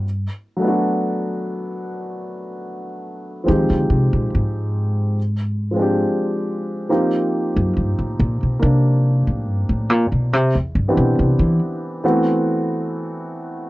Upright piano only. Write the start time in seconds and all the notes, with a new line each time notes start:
0.57 F#3 A3
0.62 B3 D4
0.67 F#4
3.44 F3 G#3 C4 D#4
3.49 G4
5.71 F3 G#3
5.76 C4 D4
5.82 G4
6.89 F3 A#3 C4 D#4 G4
8.59 A#3 D4
10.88 E3 B3 C4 D4 G4
12.04 E3 A3 B3 C4 F#4